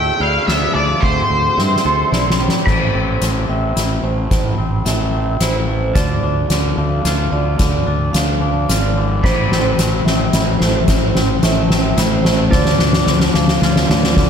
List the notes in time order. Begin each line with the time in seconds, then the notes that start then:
Already playing: D2 D3 A3 B3 E4 G5
0.20 D2 E4 D5 F5
0.47 D2 B3 E5, snare, ride
0.74 D2 F3 D5 F5
1.00 D2 D3 A3 C4 G4 C5, kick, ride
1.30 D2, ride
1.57 G2 C4 E5, snare
1.76 snare
1.85 D2 A4
2.12 B1 E4 D5, snare
2.30 snare
2.40 G3
2.49 snare
2.66 A1 A2 A4 C5 B5, kick, snare, crash
2.94 A1 C4
3.21 A1 A3, snare, closed hi-hat
3.48 A1 C4 E5
3.75 A1 E4, snare, closed hi-hat
4.03 A1 A3 C5
4.30 A1 A2, kick, snare, closed hi-hat
4.58 A1 C4
4.85 A1 A3 E5, snare, closed hi-hat
5.12 C4
5.40 A1 E4 C5, snare, closed hi-hat
5.68 A3
5.95 D2 D3 F4 D5 A5, kick, snare, closed hi-hat
6.23 D2 D4
6.50 D2 D3, snare, closed hi-hat
6.77 D2 D4 F5
7.05 D2 F4, snare, closed hi-hat
7.32 D2 D3 D5
7.58 D2 D3, kick, snare, closed hi-hat
7.87 D2 D4
8.13 D2 D3 F5, snare, closed hi-hat
8.41 D4
8.69 G#1 F4 D5, snare, closed hi-hat
8.97 D3
9.23 A1 A2 A4 C5 B5, kick, snare, crash
9.51 A1 C4, snare
9.78 A1 A3, snare, closed hi-hat
10.05 A1 C4 E5, snare
10.33 A1 E4, snare, closed hi-hat
10.59 A1 A3 C5, snare
10.87 A1 A2, kick, snare, closed hi-hat
11.14 A1 C4, snare
11.42 A1 A3 E5, snare, closed hi-hat
11.69 C4, snare
11.96 A1 E4 C5, snare, closed hi-hat
12.24 A3, snare
12.51 D2 D3 F4 D5 A5, kick, snare
12.65 snare
12.79 D2 D4, snare
12.93 snare
13.06 D2 D3, snare
13.20 snare
13.34 D2 D4 F5, snare
13.48 snare
13.62 D2 F4, snare
13.76 snare
13.89 D2 D3 D5, snare
14.03 snare
14.16 D2 D3, kick, snare